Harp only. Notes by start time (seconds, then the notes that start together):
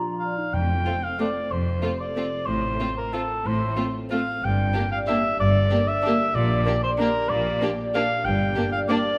Already playing: A#2 F3 A#3 D5
0.03 F4
0.20 D5
0.53 F2
0.69 A3
0.87 C5
1.03 A4
1.20 F4
1.36 A3
1.52 F2
1.68 C3
1.84 C5
2.00 A4
2.16 F4
2.33 A3
2.48 A2
2.64 C4
2.97 F4
3.31 A3
3.46 A2
3.62 C4
3.78 C5
3.95 F4
4.12 C4
4.27 A3
4.44 G2
4.59 D4
4.76 A#4
4.93 D5
5.09 G4
5.25 D4
5.40 G2
5.55 D3
5.71 A#4
5.89 D5
6.05 G4
6.21 D4
6.37 A#2
6.52 D4
6.84 D5
7.00 G4
7.15 D4
7.31 A#2
7.62 A#4
7.79 D5
7.95 G4
8.11 D4
8.26 G2
8.41 D4
8.56 A#4
8.73 D5
8.89 G4
9.04 D4